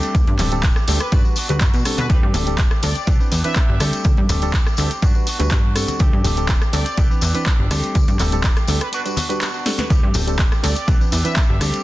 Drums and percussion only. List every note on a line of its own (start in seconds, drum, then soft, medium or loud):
0.03 closed hi-hat soft
0.03 tambourine soft
0.15 kick loud
0.15 closed hi-hat medium
0.15 tambourine soft
0.27 closed hi-hat soft
0.27 high conga medium
0.39 clap soft
0.39 open hi-hat loud
0.39 tambourine medium
0.39 low conga medium
0.51 closed hi-hat soft
0.51 tambourine soft
0.63 kick loud
0.63 clap loud
0.63 closed hi-hat medium
0.63 tambourine soft
0.76 cross-stick medium
0.76 tambourine soft
0.88 open hi-hat loud
0.88 tambourine medium
1.00 cross-stick medium
1.00 closed hi-hat medium
1.00 tambourine soft
1.12 kick loud
1.12 closed hi-hat medium
1.12 tambourine soft
1.25 tambourine soft
1.36 open hi-hat loud
1.36 tambourine medium
1.49 closed hi-hat medium
1.49 tambourine soft
1.61 kick loud
1.61 clap loud
1.61 closed hi-hat medium
1.61 tambourine medium
1.74 closed hi-hat soft
1.74 tambourine soft
1.85 cross-stick medium
1.85 open hi-hat loud
1.85 tambourine medium
1.98 closed hi-hat soft
1.98 tambourine soft
1.98 high conga medium
2.10 kick loud
2.10 closed hi-hat medium
2.10 tambourine medium
2.34 open hi-hat loud
2.34 tambourine medium
2.34 low conga medium
2.47 closed hi-hat medium
2.47 tambourine soft
2.58 kick loud
2.58 clap loud
2.58 closed hi-hat medium
2.58 tambourine medium
2.71 cross-stick medium
2.71 tambourine soft
2.83 open hi-hat loud
2.83 tambourine medium
2.95 closed hi-hat medium
2.95 tambourine soft
3.07 kick loud
3.07 closed hi-hat medium
3.07 tambourine medium
3.20 tambourine soft
3.31 open hi-hat loud
3.31 tambourine medium
3.44 closed hi-hat medium
3.44 tambourine soft
3.56 kick loud
3.56 clap loud
3.56 closed hi-hat medium
3.56 tambourine soft
3.80 cross-stick medium
3.80 open hi-hat loud
3.80 tambourine medium
3.93 closed hi-hat soft
3.93 tambourine soft
4.04 kick loud
4.04 closed hi-hat medium
4.04 tambourine medium
4.17 high conga medium
4.29 open hi-hat loud
4.29 tambourine loud
4.29 low conga medium
4.42 closed hi-hat medium
4.42 tambourine soft
4.53 kick loud
4.53 clap loud
4.53 closed hi-hat medium
4.53 tambourine soft
4.67 cross-stick medium
4.67 tambourine soft
4.77 open hi-hat loud
4.77 tambourine medium
4.91 closed hi-hat medium
4.91 tambourine soft
5.02 kick loud
5.02 closed hi-hat medium
5.02 tambourine medium
5.15 tambourine soft
5.27 open hi-hat loud
5.27 tambourine medium
5.40 closed hi-hat medium
5.40 tambourine soft
5.51 kick loud
5.51 clap loud
5.51 closed hi-hat medium
5.51 tambourine medium
5.76 cross-stick medium
5.76 open hi-hat loud
5.76 tambourine loud
5.88 closed hi-hat medium
5.88 tambourine soft
5.88 high conga medium
5.99 kick loud
5.99 closed hi-hat medium
5.99 tambourine medium
6.24 open hi-hat loud
6.24 tambourine medium
6.24 low conga medium
6.37 closed hi-hat medium
6.37 tambourine soft
6.49 kick loud
6.49 clap loud
6.49 closed hi-hat medium
6.49 tambourine medium
6.61 cross-stick medium
6.61 tambourine soft
6.73 open hi-hat loud
6.73 tambourine loud
6.86 closed hi-hat medium
6.86 tambourine soft
6.97 kick loud
6.97 closed hi-hat medium
6.97 tambourine soft
7.11 tambourine soft
7.21 open hi-hat loud
7.21 tambourine loud
7.35 closed hi-hat medium
7.35 tambourine soft
7.46 kick loud
7.46 clap loud
7.46 closed hi-hat medium
7.46 tambourine medium
7.71 cross-stick medium
7.71 open hi-hat loud
7.71 tambourine loud
7.83 closed hi-hat medium
7.83 tambourine soft
7.95 kick loud
7.95 closed hi-hat medium
7.95 tambourine medium
8.08 closed hi-hat soft
8.08 tambourine soft
8.08 high conga medium
8.19 clap soft
8.19 open hi-hat loud
8.19 tambourine loud
8.19 low conga medium
8.32 closed hi-hat medium
8.32 tambourine soft
8.44 kick loud
8.44 clap loud
8.44 closed hi-hat medium
8.44 tambourine medium
8.56 cross-stick medium
8.56 closed hi-hat soft
8.56 tambourine soft
8.67 open hi-hat loud
8.67 tambourine loud
8.81 cross-stick medium
8.81 closed hi-hat medium
8.81 tambourine soft
8.93 closed hi-hat medium
8.93 tambourine medium
9.06 closed hi-hat soft
9.06 tambourine soft
9.17 open hi-hat loud
9.17 tambourine loud
9.17 high conga medium
9.30 closed hi-hat medium
9.30 tambourine soft
9.41 clap loud
9.41 closed hi-hat medium
9.41 tambourine medium
9.54 tambourine soft
9.66 snare medium
9.66 open hi-hat loud
9.66 tambourine loud
9.78 snare medium
9.78 closed hi-hat medium
9.78 tambourine soft
9.78 high conga medium
9.90 kick loud
9.90 closed hi-hat medium
9.90 tambourine medium
10.14 open hi-hat loud
10.14 tambourine loud
10.14 low conga medium
10.27 closed hi-hat medium
10.27 tambourine soft
10.39 kick loud
10.39 clap loud
10.39 closed hi-hat medium
10.39 tambourine medium
10.52 cross-stick medium
10.52 tambourine soft
10.64 open hi-hat loud
10.64 tambourine loud
10.76 closed hi-hat medium
10.76 tambourine soft
10.88 kick loud
10.88 closed hi-hat medium
10.88 tambourine medium
11.01 tambourine soft
11.12 open hi-hat loud
11.12 tambourine medium
11.25 closed hi-hat medium
11.25 tambourine soft
11.36 kick loud
11.36 clap loud
11.36 closed hi-hat medium
11.36 tambourine medium
11.61 cross-stick medium
11.61 open hi-hat loud
11.61 tambourine loud
11.74 closed hi-hat medium
11.74 tambourine soft